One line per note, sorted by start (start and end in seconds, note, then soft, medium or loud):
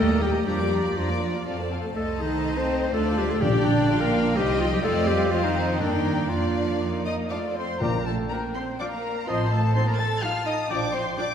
0.00 0.41 D#2 medium
0.00 0.22 A3 medium
0.00 0.24 A4 medium
0.00 0.47 D#5 medium
0.09 0.21 A#3 medium
0.09 0.21 G4 soft
0.09 0.22 A#4 soft
0.09 0.22 A#5 soft
0.21 0.34 G3 soft
0.21 0.45 G3 medium
0.21 0.34 D#4 medium
0.21 0.34 G4 soft
0.21 0.47 G4 medium
0.21 0.34 G5 medium
0.34 0.47 A#3 soft
0.34 0.47 G4 soft
0.34 0.47 A#4 soft
0.34 0.45 A#5 soft
0.46 0.91 F2 medium
0.46 0.58 F3 soft
0.46 0.95 G3 medium
0.46 0.58 D4 soft
0.46 0.98 G4 medium
0.46 0.58 D5 soft
0.46 1.69 D5 medium
0.46 0.58 A#5 medium
0.59 0.72 A#3 soft
0.59 0.72 F4 soft
0.59 0.72 A#4 soft
0.59 0.72 D6 soft
0.72 0.84 F3 soft
0.72 0.84 D4 soft
0.72 0.85 D5 soft
0.72 0.85 A#5 soft
0.84 0.97 A#3 soft
0.84 0.96 F4 soft
0.84 0.97 A#4 soft
0.84 0.97 D6 soft
0.96 1.41 F2 medium
0.96 1.45 F3 soft
0.96 1.08 F3 soft
0.96 1.08 D4 soft
0.96 1.47 F4 medium
0.96 1.09 D5 soft
0.96 1.08 A#5 soft
1.09 1.22 A#3 soft
1.09 1.22 F4 soft
1.09 1.22 A#4 soft
1.09 1.22 D6 soft
1.21 1.34 F3 soft
1.21 1.34 D4 soft
1.21 1.34 D5 soft
1.21 1.34 A#5 soft
1.34 1.47 A#3 soft
1.34 1.45 F4 soft
1.34 1.47 A#4 soft
1.34 1.47 D6 soft
1.46 1.91 F2 medium
1.46 1.58 C4 soft
1.46 1.58 F4 soft
1.46 1.58 A4 soft
1.46 1.58 F5 soft
1.59 1.71 A3 soft
1.59 1.71 A4 soft
1.59 1.72 C5 soft
1.59 1.71 A5 soft
1.71 1.84 C4 soft
1.71 1.84 F4 soft
1.71 1.84 A4 soft
1.71 1.84 F5 soft
1.84 1.95 A3 soft
1.84 1.96 A4 soft
1.84 1.96 C5 soft
1.84 1.95 A5 soft
1.96 2.90 C2 medium
1.96 2.89 A3 medium
1.96 2.04 A3 medium
1.96 2.89 D#4 medium
1.96 2.23 A4 medium
1.96 3.38 C5 medium
1.96 2.90 D#5 medium
1.96 2.90 A5 medium
2.21 2.57 D#3 medium
2.21 2.59 D#4 medium
2.57 2.93 C4 medium
2.57 2.93 C5 medium
2.93 3.42 D2 medium
2.93 3.17 A3 medium
2.93 3.40 D4 medium
2.93 3.41 F4 medium
2.93 3.20 A4 medium
2.93 3.40 D5 medium
2.93 3.41 A5 medium
3.18 3.30 G3 medium
3.18 3.32 G4 medium
3.30 3.42 A3 medium
3.30 3.43 A4 medium
3.41 4.35 A#1 medium
3.41 4.09 A#2 medium
3.41 3.66 G3 medium
3.41 4.35 D4 medium
3.41 3.89 G4 medium
3.41 3.67 G4 medium
3.41 4.35 D5 medium
3.41 3.89 D5 medium
3.41 4.35 G5 medium
3.65 4.01 D3 medium
3.65 4.02 D4 medium
3.89 4.37 F4 medium
3.89 4.37 F5 medium
4.01 4.36 A#3 medium
4.01 4.38 A#4 medium
4.36 4.84 C2 medium
4.36 4.60 G3 medium
4.36 4.83 C4 medium
4.36 4.83 D#4 medium
4.36 4.59 G4 medium
4.36 4.83 D#5 medium
4.36 4.84 D#5 medium
4.36 4.83 G5 medium
4.60 4.72 F3 medium
4.60 4.65 F4 medium
4.72 4.84 G3 medium
4.72 4.78 G4 medium
4.84 5.78 F2 medium
4.84 5.08 A3 medium
4.84 5.31 C4 medium
4.84 5.31 F4 medium
4.84 5.09 A4 loud
4.84 5.30 D5 medium
4.84 5.31 D#5 medium
4.84 5.31 F5 medium
5.07 5.31 G3 medium
5.07 5.32 G4 medium
5.31 5.44 F3 medium
5.31 5.79 C4 medium
5.31 5.45 F4 medium
5.31 5.55 F4 medium
5.31 5.80 C5 medium
5.31 5.79 D#5 medium
5.31 5.79 F5 medium
5.43 5.79 D#3 medium
5.43 5.79 D#4 medium
5.56 5.80 D#4 medium
5.80 6.30 G2 medium
5.80 5.85 D3 medium
5.80 6.29 A#3 medium
5.80 5.93 D4 medium
5.80 6.29 D4 medium
5.80 6.30 A#4 medium
5.80 6.28 D5 medium
5.80 6.29 G5 medium
5.92 6.29 D#3 medium
5.92 6.30 D#4 medium
6.29 7.58 F2 medium
6.29 7.04 F3 medium
6.29 7.29 A#3 medium
6.29 6.80 D4 medium
6.29 7.05 F4 medium
6.29 7.04 D5 medium
6.29 7.05 F5 medium
6.81 7.31 D#4 medium
7.05 7.14 D#4 soft
7.05 7.17 D#5 soft
7.05 7.14 D#5 soft
7.05 7.29 D#5 medium
7.05 7.14 D#6 medium
7.30 7.60 A3 soft
7.30 7.39 D4 soft
7.30 7.60 F4 soft
7.30 7.54 C5 soft
7.30 7.55 D5 soft
7.30 7.57 D5 soft
7.30 7.58 D5 soft
7.30 7.38 F5 soft
7.30 7.38 D6 soft
7.55 7.81 C4 soft
7.55 7.81 C5 soft
7.55 7.83 C5 soft
7.55 7.81 C6 medium
7.80 8.23 A#1 soft
7.80 8.52 A#2 medium
7.80 7.98 F3 soft
7.80 7.89 A#3 soft
7.80 7.98 F4 soft
7.80 8.06 A#4 soft
7.80 8.08 A#4 soft
7.80 8.06 A#4 medium
7.80 7.99 D5 soft
7.80 8.82 G5 medium
7.80 8.05 A#5 medium
8.06 8.30 A3 soft
8.06 8.14 A4 soft
8.06 8.30 A4 soft
8.06 8.33 A4 soft
8.06 8.14 A5 medium
8.31 8.39 F3 soft
8.31 8.55 A#3 soft
8.31 8.39 D4 soft
8.31 8.55 A#4 soft
8.31 8.39 A#5 medium
8.55 8.80 C4 soft
8.55 8.80 C5 medium
8.55 8.80 C5 soft
8.55 8.63 C6 medium
8.79 8.88 F3 soft
8.79 8.92 D4 medium
8.79 8.88 D4 soft
8.79 8.91 D5 medium
8.79 8.92 D5 medium
8.79 8.86 D5 medium
8.79 9.28 F5 soft
8.79 8.85 D6 medium
8.92 9.27 A#3 medium
8.92 9.29 A#4 soft
8.92 9.28 A#4 soft
8.92 9.28 A#5 medium
9.27 9.68 A1 medium
9.27 9.44 F3 medium
9.27 9.51 C4 medium
9.27 9.44 F4 medium
9.27 9.51 C5 medium
9.27 9.52 C5 medium
9.27 9.54 C5 medium
9.27 9.45 D#5 soft
9.27 10.21 A5 medium
9.27 9.52 C6 medium
9.51 9.75 A3 medium
9.51 9.74 A4 medium
9.51 9.75 A4 medium
9.51 9.75 A4 soft
9.51 9.76 A5 medium
9.75 9.84 F3 soft
9.75 9.87 C4 medium
9.75 9.84 D#4 soft
9.75 9.89 C5 medium
9.75 9.88 C5 medium
9.75 9.81 C5 medium
9.75 9.87 C6 medium
9.87 9.99 A#3 soft
9.87 9.92 A#4 soft
9.87 10.01 A#4 medium
9.87 10.00 A#4 medium
9.87 10.00 A#5 medium
9.99 10.22 A4 medium
9.99 10.21 A5 medium
9.99 10.07 A5 medium
9.99 10.24 A5 medium
9.99 10.22 A6 medium
10.22 10.30 F3 soft
10.22 10.30 D#4 soft
10.22 10.46 F4 medium
10.22 10.47 F5 medium
10.22 10.30 F5 medium
10.22 10.46 F5 medium
10.22 10.69 A5 medium
10.22 10.46 F6 medium
10.46 10.54 D#4 medium
10.46 10.71 D#5 medium
10.46 10.54 D#5 medium
10.46 10.73 D#5 medium
10.46 10.70 D#6 medium
10.70 11.10 A#1 medium
10.70 10.87 F3 medium
10.70 10.94 D4 medium
10.70 10.87 F4 medium
10.70 10.96 D5 medium
10.70 10.87 D5 medium
10.70 10.78 D5 medium
10.70 10.94 D5 medium
10.70 11.34 G5 medium
10.70 10.94 D6 medium
10.93 11.02 C4 medium
10.93 11.17 C5 medium
10.93 11.05 C5 medium
10.93 11.18 C6 medium
11.18 11.26 F3 medium
11.18 11.26 D4 medium
11.18 11.26 D5 medium
11.18 11.24 D5 medium
11.18 11.29 D5 medium
11.18 11.34 D6 medium